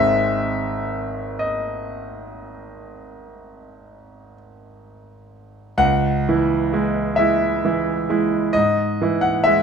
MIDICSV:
0, 0, Header, 1, 2, 480
1, 0, Start_track
1, 0, Key_signature, 4, "minor"
1, 0, Tempo, 988468
1, 1881, Tempo, 964630
1, 2841, Time_signature, 12, 3, 24, 8
1, 2841, Tempo, 910470
1, 4857, End_track
2, 0, Start_track
2, 0, Title_t, "Grand piano"
2, 0, Program_c, 0, 0
2, 0, Note_on_c, 0, 32, 58
2, 0, Note_on_c, 0, 51, 44
2, 0, Note_on_c, 0, 56, 47
2, 0, Note_on_c, 0, 60, 40
2, 0, Note_on_c, 0, 76, 91
2, 70, Control_c, 0, 64, 127
2, 676, Note_on_c, 0, 75, 63
2, 682, Note_off_c, 0, 76, 0
2, 2116, Note_off_c, 0, 75, 0
2, 2797, Note_off_c, 0, 32, 0
2, 2810, Note_off_c, 0, 51, 0
2, 2813, Note_off_c, 0, 56, 0
2, 2817, Note_off_c, 0, 60, 0
2, 2827, Note_on_c, 0, 37, 63
2, 2828, Note_on_c, 0, 78, 97
2, 2852, Control_c, 0, 64, 0
2, 2954, Control_c, 0, 64, 127
2, 3096, Note_on_c, 0, 64, 47
2, 3097, Note_on_c, 0, 52, 47
2, 3314, Note_off_c, 0, 52, 0
2, 3314, Note_off_c, 0, 64, 0
2, 3330, Note_on_c, 0, 56, 51
2, 3332, Note_on_c, 0, 64, 53
2, 3546, Note_off_c, 0, 56, 0
2, 3547, Note_off_c, 0, 64, 0
2, 3557, Note_on_c, 0, 76, 71
2, 3561, Note_off_c, 0, 78, 0
2, 3571, Note_on_c, 0, 56, 45
2, 3575, Note_on_c, 0, 64, 49
2, 3786, Note_off_c, 0, 56, 0
2, 3788, Note_off_c, 0, 64, 0
2, 3813, Note_on_c, 0, 52, 47
2, 3817, Note_on_c, 0, 64, 50
2, 4029, Note_off_c, 0, 52, 0
2, 4030, Note_off_c, 0, 64, 0
2, 4050, Note_on_c, 0, 56, 48
2, 4052, Note_on_c, 0, 64, 52
2, 4257, Note_off_c, 0, 37, 0
2, 4267, Note_off_c, 0, 56, 0
2, 4268, Note_off_c, 0, 64, 0
2, 4278, Note_on_c, 0, 75, 82
2, 4280, Note_off_c, 0, 76, 0
2, 4294, Control_c, 0, 64, 0
2, 4295, Note_on_c, 0, 44, 48
2, 4389, Control_c, 0, 64, 127
2, 4535, Note_on_c, 0, 52, 49
2, 4540, Note_on_c, 0, 64, 50
2, 4639, Note_on_c, 0, 78, 80
2, 4642, Note_off_c, 0, 75, 0
2, 4674, Note_off_c, 0, 44, 0
2, 4748, Note_off_c, 0, 52, 0
2, 4750, Note_off_c, 0, 64, 0
2, 4756, Note_on_c, 0, 76, 83
2, 4761, Note_off_c, 0, 78, 0
2, 4771, Note_on_c, 0, 56, 44
2, 4775, Note_on_c, 0, 64, 46
2, 4857, Note_off_c, 0, 56, 0
2, 4857, Note_off_c, 0, 64, 0
2, 4857, Note_off_c, 0, 76, 0
2, 4857, End_track
0, 0, End_of_file